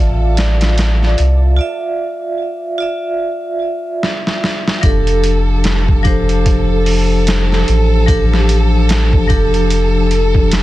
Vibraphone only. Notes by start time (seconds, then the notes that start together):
Already playing: F4 D5 E5 F5
1.56 F4 D5
1.61 E5
2.78 F4 D5
2.82 E5
4.81 F3 D4 G4
4.85 A4
6.03 F3 D4 G4
6.07 C5
8.06 F3 D4 G4
8.10 A4
9.27 F3 D4 G4
9.31 A4